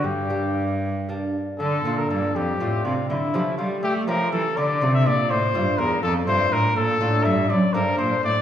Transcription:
0.04 lute G2, cello G2, trumpet G4
0.30 lute A#3 D4 G4
1.09 lute A#3 D4 G4
1.59 cello D3, lute D3, trumpet A4
1.85 lute A#2 A3 D4 F4, cello A#2
1.98 trumpet A#4
2.09 lute G2, cello G2, trumpet A4
2.36 cello F2, lute F2, trumpet G4
2.60 lute A2 A3 D4 F4, cello A2
2.85 lute C3, cello C3, trumpet F4
3.09 cello D3, lute D3, trumpet E4
3.34 lute F3 A3 C#4 G4, cello F3
3.57 lute G3, cello G3, trumpet F4
3.83 lute A3, cello A3, trumpet G4
4.08 lute F3 A3 C#4 G4, cello F3, trumpet A#4
4.32 lute E3, cello E3, trumpet A4
4.57 lute D3, cello D3, trumpet D5
4.81 lute C3 A3 D4 F4, cello C3
4.94 trumpet E5
5.06 lute A#2, cello A#2, trumpet D5
5.30 lute A2, cello A2, trumpet C5
5.54 lute G2 A3 D4 F4, cello G2
5.78 lute E2, cello E2, trumpet A#4
6.03 lute F2, cello F2, trumpet A4
6.27 lute G2 A3 D4 F4, cello G2, trumpet C5
6.52 lute A2, cello A2, trumpet A#4
6.76 lute A#2, cello A#2, trumpet A4
7.01 lute A2 A3 D4 F4, cello A2
7.24 cello G2, lute G2, trumpet E5
7.50 cello F#2, trumpet D5
7.73 lute G2 C4 D4 A4, cello G2, trumpet A#4
7.98 lute A#2, cello A#2, trumpet C5
8.23 lute A2, cello A2, trumpet D5

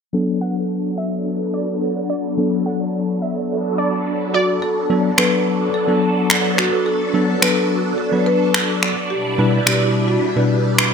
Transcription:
0.13 tine electric piano F#3 B3 D4 A4, string machine F#3 B3 D4 A4
0.41 synth pluck F#5
0.98 synth pluck E5
1.54 synth pluck D5
2.10 synth pluck D5
2.37 tine electric piano F#3 B3 D4 A4
2.66 synth pluck F#5
3.22 synth pluck E5
3.78 synth pluck D5
4.34 marimba F#4, synth pluck D5
4.62 string machine F#3 B3 D4 A4, marimba A4
4.90 tine electric piano F#3 B3 D4 A4
5.18 tine electric piano F#3 B3 D4 A4, marimba B4, finger snap
5.74 marimba A4
5.88 tine electric piano F#3 B3 D4 A4
6.30 finger snap
6.58 marimba F#4, finger snap
6.86 marimba A4
7.14 tine electric piano F#3 B3 D4 A4
7.42 tine electric piano F#3 B3 D4 A4, marimba B4, finger snap
7.98 marimba A4
8.12 tine electric piano F#3 B3 D4 B4
8.26 marimba B4
8.54 finger snap
8.83 finger snap
9.10 string machine B2 G3 E4 B4, marimba G4
9.38 tine electric piano B2 G3 D4 E4 B4
9.66 tine electric piano B2 G3 D4 E4 D5, marimba G4, finger snap
10.08 marimba F#4
10.36 tine electric piano B2 G3 D4 E4 B4
10.78 finger snap

